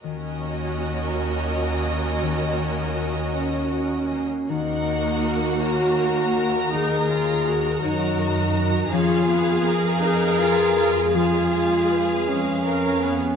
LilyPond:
<<
  \new Staff \with { instrumentName = "Violin section" } { \time 6/8 \key ees \minor \tempo 4. = 54 << { ees''2.~ | ees''2~ ees''8. r16 | ges''4. bes''4.~ | bes''4. bes''4. |
f''4. f''4. | f''2~ f''8. r16 | } \\ { bes'2.~ | bes'2~ bes'8. r16 | bes'4. bes'4.~ | bes'2. |
aes'2. | aes'2~ aes'8. r16 | } >> }
  \new Staff \with { instrumentName = "Harp" } { \time 6/8 \key ees \minor ees8 des'8 ges'8 des''8 ges'8 bes8 | ees8 des'8 ges'8 des''8 ges'8 bes8 | ees8 des'8 bes'8 des''8 bes'8 ges'8 | ees8 des'8 bes'8 des''8 bes'8 ges'8 |
f8 f'8 ces''8 f''8 ces''8 aes'8 | f8 f'8 ces''8 f''8 ces''8 aes'8 | }
  \new Staff \with { instrumentName = "Alto flute" } { \time 6/8 \key ees \minor r2. | r4. des'4. | ees'4. ges'4. | aes'4. ees'4. |
f'4 r8 aes'4. | f'4. des'4. | }
  \new Staff \with { instrumentName = "Viola section" } { \time 6/8 \key ees \minor << { ges'2.~ | ges'2~ ges'8. r16 | ges'2. | ees'8 f'8 ges'2 |
aes'4. ees'8 f'8 f'8 | aes'4. aes8 bes'8 ces'8 | } \\ { des'2.~ | des'2~ des'8. r16 | bes2. | ees'2. |
des'8 ces'8 bes'2 | aes4. r4. | } >> }
  \new Staff \with { instrumentName = "Cello section" } { \clef bass \time 6/8 \key ees \minor ees,2.~ | ees,2~ ees,8. r16 | ees,2.~ | ees,4. ges,4. |
f,2.~ | f,2~ f,8. r16 | }
>>